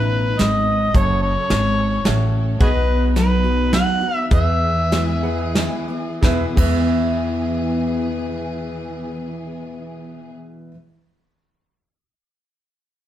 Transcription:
Already playing: upright bass A1, steel-string acoustic guitar A2 B2, string section F#3 B3 D#4, upright piano F#4 B4 D#5, harmonica B4
0.39 upright bass G#1, steel-string acoustic guitar G#2, harmonica D#5, snare, closed hi-hat
0.95 upright bass F#1, steel-string acoustic guitar F#2, string section C#4 A4, upright piano F#4 A4 C#5, harmonica C#5, kick, closed hi-hat
1.22 harmonica C#5
1.50 upright bass G#1, steel-string acoustic guitar G#2, snare, closed hi-hat
2.05 upright bass A1, steel-string acoustic guitar A2, upright piano F#4 A4 C#5, snare, closed hi-hat
2.60 upright bass B1, steel-string acoustic guitar B2, string section B3 D#4, upright piano F#4 B4 D#5, harmonica F#4 G#4 B4, kick, closed hi-hat
3.16 steel-string acoustic guitar F#3 B3 D#4 F#4, harmonica B4, snare, closed hi-hat
3.44 steel-string acoustic guitar D#4 F#4
3.73 steel-string acoustic guitar F#3 B3 D#4 F#4, harmonica F#5, snare, closed hi-hat
4.01 steel-string acoustic guitar D#4 F#4
4.16 harmonica E5
4.31 steel-string acoustic guitar E2, upright bass E2, string section E3 G#4, upright piano G#4 B4 E5, harmonica E5, kick, closed hi-hat
4.92 steel-string acoustic guitar E3 G#3 B3 E4, snare, closed hi-hat
5.23 steel-string acoustic guitar B3 E4, upright piano G#4 B4 F#5
5.55 steel-string acoustic guitar E3 G#3 B3 E4, snare, closed hi-hat
5.88 steel-string acoustic guitar B3 E4
6.21 steel-string acoustic guitar E2 B2 E3 G#3 B3 E4, upright bass E2, string section E3 B3 G#4, upright piano G#4 B4, kick, snare
6.25 upright piano E5
6.56 steel-string acoustic guitar E2 B2 E3 G#3 B3 E4, upright bass E2, upright piano G#4 B4 E5, kick, crash

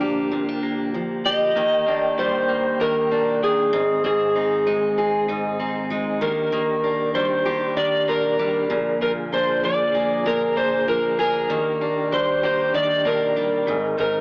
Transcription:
Already playing: steel-string acoustic guitar A#2 F3 D4, tonewheel organ D3 A#3 G4, clean electric guitar F3 D4, electric slide guitar D4
0.01 clean electric guitar A#3, steel-string acoustic guitar G4
0.31 steel-string acoustic guitar A#2, clean electric guitar C4
0.49 clean electric guitar D4
0.63 clean electric guitar A#3
0.94 steel-string acoustic guitar F3
1.25 clean electric guitar G4, steel-string acoustic guitar G4, electric slide guitar D#5
1.56 tonewheel organ D#3 A#3 G5, steel-string acoustic guitar D#3, clean electric guitar A#3
1.86 clean electric guitar A#3, steel-string acoustic guitar D4
2.18 steel-string acoustic guitar G3, clean electric guitar D4, electric slide guitar C5
2.49 clean electric guitar A#3
2.80 steel-string acoustic guitar D#3, clean electric guitar D4, electric slide guitar A#4
3.11 clean electric guitar A#3, steel-string acoustic guitar D4
3.43 clean electric guitar D4, electric slide guitar G#4
3.73 steel-string acoustic guitar G#2, clean electric guitar C4, tonewheel organ C4 G#4
4.04 steel-string acoustic guitar G#2, clean electric guitar C4, electric slide guitar G#4
4.36 clean electric guitar C4, steel-string acoustic guitar D#4
4.67 steel-string acoustic guitar G#3, clean electric guitar D#4
4.98 clean electric guitar C4, steel-string acoustic guitar G#4
5.28 steel-string acoustic guitar G#2, clean electric guitar D#4
5.60 clean electric guitar C4, steel-string acoustic guitar D#4
5.90 steel-string acoustic guitar G#3, clean electric guitar D#4
6.21 steel-string acoustic guitar D#3, clean electric guitar A#3, tonewheel organ D4 G4, electric slide guitar A#4
6.52 steel-string acoustic guitar D#3, clean electric guitar A#3
6.84 clean electric guitar A#3, steel-string acoustic guitar D4
7.15 steel-string acoustic guitar G3, clean electric guitar D4, electric slide guitar C5
7.45 clean electric guitar A#3, steel-string acoustic guitar G4
7.77 steel-string acoustic guitar D#3, clean electric guitar D4, electric slide guitar D5
8.08 clean electric guitar A#3, steel-string acoustic guitar D4, electric slide guitar A#4
8.39 steel-string acoustic guitar G3, clean electric guitar D4
8.70 steel-string acoustic guitar A#2, tonewheel organ D3 A#3 G#4, clean electric guitar F3
9.01 steel-string acoustic guitar A#2, clean electric guitar F3, electric slide guitar A#4
9.32 clean electric guitar A#3, steel-string acoustic guitar D4, electric slide guitar C5
9.64 steel-string acoustic guitar F3, clean electric guitar D4, electric slide guitar D5
9.95 clean electric guitar A#3, steel-string acoustic guitar G#4
10.26 steel-string acoustic guitar A#2, clean electric guitar D4, electric slide guitar A#4
10.57 clean electric guitar A#3, steel-string acoustic guitar D4, electric slide guitar C5
10.88 steel-string acoustic guitar F3, clean electric guitar D4, electric slide guitar A#4
11.19 clean electric guitar G#4, steel-string acoustic guitar G#4, electric slide guitar A#4
11.50 steel-string acoustic guitar D#3, tonewheel organ D#3 D4 G4, clean electric guitar A#3
11.81 clean electric guitar A#3, steel-string acoustic guitar D4
12.12 steel-string acoustic guitar G3, clean electric guitar D4, electric slide guitar C5
12.43 clean electric guitar A#3, steel-string acoustic guitar G4, electric slide guitar C5
12.74 steel-string acoustic guitar D#3, clean electric guitar D4, electric slide guitar D5
13.05 clean electric guitar A#3, steel-string acoustic guitar D4, electric slide guitar A#4
13.36 steel-string acoustic guitar G3, clean electric guitar D4
13.67 steel-string acoustic guitar G#2, clean electric guitar D#3, tonewheel organ D#3 C4 G#4
13.98 steel-string acoustic guitar G#2, clean electric guitar D#3, electric slide guitar A#4

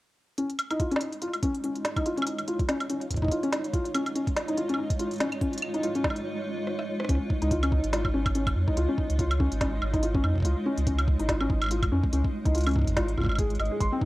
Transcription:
0.38 ambient pad G#3, felt piano C#4, closed hi-hat
0.50 closed hi-hat
0.59 closed hi-hat, high woodblock
0.66 ambient pad D#4
0.71 felt piano D#4, closed hi-hat, high woodblock
0.75 ambient pad D#5
0.80 felt piano F4, kick, closed hi-hat
0.91 felt piano C#4, closed hi-hat
0.96 snare
1.01 felt piano D#4, ambient pad F4, closed hi-hat
1.13 ambient pad C#5, closed hi-hat
1.22 felt piano F4, closed hi-hat
1.33 closed hi-hat, high woodblock
1.43 felt piano C#4, kick, closed hi-hat
1.54 closed hi-hat
1.64 felt piano C#4, closed hi-hat
1.75 closed hi-hat
1.85 snare, closed hi-hat
1.96 felt piano D#4, kick, closed hi-hat, high woodblock
2.06 felt piano F4, closed hi-hat
2.17 felt piano C#4, closed hi-hat
2.22 high woodblock
2.27 felt piano D#4, closed hi-hat
2.38 closed hi-hat, high woodblock
2.48 felt piano F4, closed hi-hat
2.59 kick, closed hi-hat
2.69 felt piano C#4, snare, closed hi-hat
2.80 closed hi-hat, high woodblock
2.90 felt piano C#4, closed hi-hat
3.01 closed hi-hat
3.11 kick, closed hi-hat
3.14 kick, closed hi-hat
3.18 kick
3.22 felt piano D#4, kick
3.25 kick
3.28 felt piano F4, kick, closed hi-hat
3.43 felt piano C#4, closed hi-hat
3.53 snare, closed hi-hat
3.64 closed hi-hat
3.73 felt piano F4, kick, closed hi-hat
3.85 closed hi-hat
3.94 felt piano C#4, closed hi-hat, high woodblock
4.06 closed hi-hat, high woodblock
4.15 felt piano C#4, closed hi-hat
4.27 kick, closed hi-hat
4.36 snare, closed hi-hat
4.48 felt piano D#4, closed hi-hat
4.57 felt piano F4, closed hi-hat
4.69 felt piano C#4, closed hi-hat
4.74 high woodblock
4.78 felt piano D#4
4.90 kick, closed hi-hat
4.99 felt piano F4, closed hi-hat
5.11 closed hi-hat
5.13 closed hi-hat
5.16 closed hi-hat
5.18 felt piano C#4, snare, closed hi-hat
5.20 closed hi-hat
5.32 closed hi-hat, high woodblock
5.41 felt piano C#4, kick, closed hi-hat
5.53 closed hi-hat
5.58 closed hi-hat
5.62 high woodblock
5.74 felt piano D#4, closed hi-hat
5.83 felt piano F4, closed hi-hat
5.95 felt piano C#4, closed hi-hat
6.04 felt piano D#4, kick, snare
6.10 high woodblock
6.16 closed hi-hat
6.67 cross-stick
6.79 cross-stick
7.00 cross-stick
7.05 cross-stick
7.09 sub bass C#2, felt piano C#4, kick, closed hi-hat
7.15 cross-stick
7.30 kick
7.42 sub bass C#2, felt piano D#4, closed hi-hat
7.51 felt piano F4, kick, closed hi-hat
7.63 felt piano C#4, closed hi-hat, high woodblock
7.72 felt piano D#4, kick
7.84 sub bass G#1, closed hi-hat
7.93 felt piano F4, snare, closed hi-hat
8.05 kick, high woodblock
8.14 sub bass G#1, felt piano C#4
8.26 kick, closed hi-hat, high woodblock
8.35 felt piano C#4, closed hi-hat
8.47 kick, closed hi-hat, high woodblock
8.56 sub bass F2
8.68 felt piano D#4, kick
8.77 sub bass C#2, felt piano F4, closed hi-hat
8.89 felt piano C#4
8.98 felt piano D#4, kick
9.10 sub bass C#2, closed hi-hat
9.19 felt piano F4, kick, closed hi-hat
9.31 closed hi-hat, high woodblock
9.40 felt piano C#4, kick
9.52 sub bass G#1, closed hi-hat
9.61 felt piano C#4, kick, snare, closed hi-hat
9.82 sub bass G#1, high woodblock
9.94 felt piano D#4, kick, closed hi-hat
10.03 felt piano F4, closed hi-hat
10.15 felt piano C#4, kick
10.24 sub bass F2, felt piano D#4, high woodblock
10.36 kick
10.38 kick
10.40 kick
10.43 sub bass C#2, felt piano F4, kick, closed hi-hat
10.66 felt piano C#4
10.78 sub bass C#2, closed hi-hat
10.87 felt piano C#4, kick, closed hi-hat
10.99 closed hi-hat, high woodblock
11.08 kick
11.19 sub bass G#1, felt piano D#4, closed hi-hat
11.29 felt piano F4, kick, snare, closed hi-hat
11.40 felt piano C#4, high woodblock
11.50 sub bass G#1, felt piano D#4, kick
11.61 closed hi-hat, high woodblock
11.64 high woodblock
11.66 high woodblock
11.68 felt piano F4, closed hi-hat, high woodblock
11.82 kick, closed hi-hat, high woodblock
11.92 sub bass F2, felt piano C#4
12.03 kick
12.13 sub bass C#2, felt piano C#4, closed hi-hat
12.24 kick
12.45 sub bass C#2, felt piano D#4, kick, closed hi-hat
12.55 felt piano F4, closed hi-hat
12.58 closed hi-hat
12.61 closed hi-hat
12.63 closed hi-hat
12.66 felt piano C#4, closed hi-hat, high woodblock
12.69 closed hi-hat
12.71 closed hi-hat
12.73 felt piano D#4, kick, closed hi-hat
12.78 kick
12.81 kick
12.84 sub bass G#1, kick
12.87 kick, closed hi-hat
12.90 kick
12.92 kick
12.94 kick
12.97 felt piano F4, kick, snare, closed hi-hat
13.08 closed hi-hat
13.18 sub bass G#1, felt piano F4, kick, high woodblock
13.20 kick, high woodblock
13.23 kick, high woodblock
13.26 kick, high woodblock
13.32 high woodblock
13.35 felt piano G#4, kick, closed hi-hat, high woodblock
13.50 closed hi-hat
13.55 closed hi-hat
13.59 sub bass G#1, felt piano D#5, closed hi-hat, high woodblock
13.65 closed hi-hat
13.71 felt piano G#4
13.80 sub bass G#1, felt piano C6, kick, closed hi-hat
13.91 ambient pad C4, felt piano C4
14.01 felt piano D#4, kick

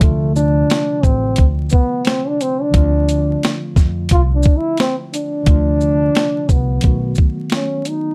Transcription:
Already playing: tine electric piano D3
0.00 upright bass D2, tine electric piano C3 F3 A3, trombone A3, kick, closed hi-hat
0.04 tine electric piano F4
0.36 trombone D4, shaker
0.70 snare, closed hi-hat
1.03 upright bass A1, trombone C4, kick, shaker
1.36 upright bass D2, kick, closed hi-hat
1.70 trombone B3, kick, shaker
2.05 trombone C4, snare, closed hi-hat
2.27 trombone D4
2.41 trombone C4, closed hi-hat, shaker
2.61 trombone D4
2.70 upright bass D2, tine electric piano D3 F3 A3, kick, closed hi-hat
2.75 tine electric piano C4 F4
3.09 closed hi-hat, shaker
3.43 snare, closed hi-hat
3.76 upright bass F2, kick, snare, shaker
4.09 upright bass C2, trombone F4, kick, closed hi-hat
4.35 trombone D4
4.43 kick, shaker
4.57 trombone E4
4.77 trombone C4, snare, closed hi-hat
5.14 trombone D4, closed hi-hat, shaker
5.43 upright bass D2, tine electric piano D3 F3 A3, kick, closed hi-hat
5.48 tine electric piano C3 F4
5.81 shaker
6.15 snare, closed hi-hat
6.49 upright bass C2, trombone B3, kick, shaker
6.80 tine electric piano D3 F#3 A3, kick, closed hi-hat
6.84 upright bass B1, tine electric piano D#3 B3 F#4
7.15 kick, shaker
7.50 snare, closed hi-hat
7.54 trombone C#4
7.85 trombone D#4, closed hi-hat, shaker

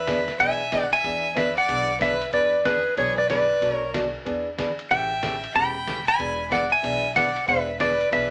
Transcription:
Already playing: upright bass E2, fiddle B4, electric slide guitar E5
0.07 hollow-body jazz guitar E3 B3 D4 G#4, kick, snare, hi-hat pedal, ride
0.28 snare, ride
0.39 upright bass B1, hollow-body jazz guitar E3 B3 D4 G#4, fiddle E5, electric slide guitar G#5, kick, ride
0.72 hollow-body jazz guitar E3 B3 D4 G#4, kick, snare, hi-hat pedal, ride
0.93 fiddle E5, electric slide guitar G#5, ride
1.04 upright bass E2, hollow-body jazz guitar E3 B3 D4 G#4, kick, ride
1.36 hollow-body jazz guitar E3 B3 D4 G#4, fiddle B4, electric slide guitar E5, kick, snare, hi-hat pedal, ride
1.57 fiddle D5, electric slide guitar F#5, ride
1.69 upright bass B1, hollow-body jazz guitar E3 B3 D4 G#4, kick, ride
2.00 hollow-body jazz guitar E3 B3 D4 G#4, fiddle B4, electric slide guitar E5, kick, snare, hi-hat pedal, ride
2.21 ride
2.33 upright bass E2, hollow-body jazz guitar E3 B3 D4 G#4, fiddle B4, electric slide guitar D5, kick, ride
2.65 hollow-body jazz guitar E3 B3 D4 G#4, fiddle G#4, electric slide guitar B4, kick, snare, hi-hat pedal, ride
2.97 upright bass B1, hollow-body jazz guitar E3 B3 D4 G#4, fiddle G#4, electric slide guitar C#5, kick, ride
3.18 fiddle B4, electric slide guitar D5
3.29 hollow-body jazz guitar E3 B3 D4 G#4, fiddle B4, electric slide guitar D5, kick, snare, hi-hat pedal, ride
3.61 upright bass B1, hollow-body jazz guitar B2 F#3 A3 D4 F#4, kick, ride
3.72 fiddle A#4, electric slide guitar C#5
3.94 hollow-body jazz guitar B2 F#3 A3 D4 F#4, kick, snare, hi-hat pedal, ride
4.25 upright bass E2, hollow-body jazz guitar E3 B3 D4 G#4, kick, ride
4.58 hollow-body jazz guitar E3 B3 D4 G#4, kick, snare, hi-hat pedal, ride
4.79 ride
4.91 upright bass A1, hollow-body jazz guitar C#3 E3 A3 C#4 G4, fiddle E5, electric slide guitar G5, kick, ride
5.23 hollow-body jazz guitar C#3 E3 A3 C#4 G4, kick, snare, hi-hat pedal, ride
5.44 ride
5.54 upright bass E1, hollow-body jazz guitar C#3 E3 A3 C#4 G4, fiddle G5, electric slide guitar B5, kick, ride
5.87 hollow-body jazz guitar C#3 E3 A3 C#4 G4, kick, snare, hi-hat pedal, ride
6.07 fiddle G#5, electric slide guitar B5, ride
6.19 upright bass E1, hollow-body jazz guitar E3 B3 D4 G#4, kick, ride
6.50 hollow-body jazz guitar E3 B3 D4 G#4, fiddle D5, electric slide guitar F#5, kick, snare, hi-hat pedal, ride
6.71 fiddle E5, electric slide guitar G#5
6.83 upright bass B1, hollow-body jazz guitar E3 B3 D4 G#4, kick, ride
7.16 hollow-body jazz guitar E3 B3 D4 G#4, fiddle D5, electric slide guitar F#5, kick, snare, hi-hat pedal, ride
7.36 ride
7.48 upright bass E1, hollow-body jazz guitar E3 B3 D4 G#4, fiddle B4, electric slide guitar E5, kick, ride
7.79 hollow-body jazz guitar E3 B3 D4 G#4, fiddle B4, electric slide guitar D5, kick, snare, hi-hat pedal, ride
8.01 ride
8.11 upright bass B1, hollow-body jazz guitar E3 B3 D4 G#4, fiddle B4, electric slide guitar E5, kick, ride

